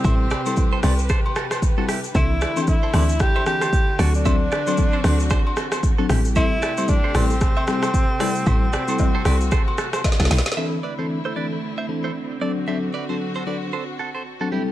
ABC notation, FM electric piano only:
X:1
M:4/4
L:1/16
Q:"Swing 16ths" 1/4=114
K:Ador
V:1 name="FM electric piano"
[G,CEA]2 z [G,CEA]3 [G,CEA]2 z4 z [G,CEA] z2 | [E,CDA]2 z [E,CDA] z2 [E,CDA]2 z2 [E,CDA]2 z2 [F,CDA]2 | [F,CDA]2 z [F,CDA]3 [F,CDA]2 z4 z [F,CDA] [G,CEA]2 | [G,CEA]2 z [G,CEA] z2 [G,CEA]2 z2 [G,CEA]2 z2 [G,CEA]2 |
[G,CEA]2 z [G,CEA]3 [G,CEA]2 z4 z [G,CEA] z2 | [E,CDA]2 z [E,CDA] z2 [E,CDA]2 z2 [E,CDA]2 z2 [F,CDA]2 | [F,CDA]2 z [F,CDA]3 [F,CDA]2 z4 z [F,CDA] [G,CEA]2 |]